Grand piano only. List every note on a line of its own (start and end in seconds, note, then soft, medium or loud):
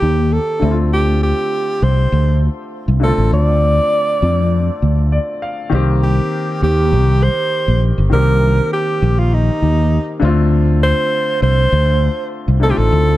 0.00 0.57 D#3 medium
0.00 0.58 A#3 medium
0.00 0.59 C4 medium
0.00 0.59 G4 medium
0.60 2.97 D3 medium
0.60 2.98 A3 medium
0.60 2.99 C4 medium
0.65 0.70 E4 medium
0.71 3.03 F4 medium
3.00 5.37 D3 medium
3.00 5.38 A3 medium
3.00 5.39 C4 medium
3.05 5.40 F4 medium
5.12 5.40 D5 medium
5.42 5.70 F5 medium
5.70 8.07 D#3 medium
5.70 8.08 A#3 medium
5.70 8.09 C4 medium
5.75 8.09 G4 medium
8.10 10.17 D#3 medium
8.10 10.18 A#3 medium
8.10 10.19 C4 medium
8.15 10.19 G4 medium
10.20 12.57 D3 medium
10.20 12.58 A3 medium
10.20 12.59 C4 medium
10.25 12.59 F4 medium
12.60 13.17 D3 medium
12.60 13.17 A3 medium
12.60 13.17 C4 medium
12.65 12.70 D#4 medium
12.71 13.17 F4 medium